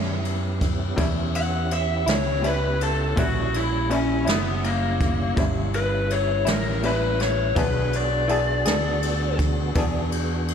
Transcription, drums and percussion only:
0.25 ride medium
0.61 kick medium
0.61 ride medium
0.98 kick medium
0.98 ride medium
1.35 ride medium
1.71 ride medium
2.07 snare loud
2.07 ride medium
2.44 ride medium
2.81 ride medium
3.17 kick loud
3.17 ride medium
3.54 ride medium
3.91 ride medium
4.27 snare loud
4.27 ride medium
4.64 ride medium
5.01 kick medium
5.01 ride medium
5.37 kick loud
5.37 ride medium
5.74 ride medium
6.10 ride medium
6.46 snare loud
6.46 ride medium
6.83 ride medium
7.19 snare soft
7.19 ride medium
7.56 kick loud
7.56 ride medium
7.93 ride medium
8.29 ride medium
8.65 snare loud
8.65 ride medium
9.03 ride medium
9.39 kick medium
9.39 ride medium
9.75 kick loud
9.75 ride medium
10.12 ride medium
10.48 ride medium

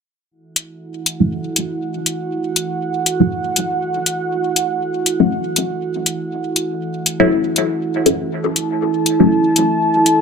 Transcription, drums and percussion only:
0.56 closed hi-hat medium
1.06 closed hi-hat medium
1.56 closed hi-hat medium
2.06 closed hi-hat medium
2.56 closed hi-hat medium
3.06 closed hi-hat medium
3.56 closed hi-hat medium
4.06 closed hi-hat medium
4.56 closed hi-hat medium
5.06 closed hi-hat medium
5.56 closed hi-hat medium
6.06 closed hi-hat medium
6.56 closed hi-hat medium
7.06 closed hi-hat medium
7.56 closed hi-hat medium
8.06 closed hi-hat medium
8.56 closed hi-hat medium
9.06 closed hi-hat medium
9.56 closed hi-hat medium
10.06 closed hi-hat medium

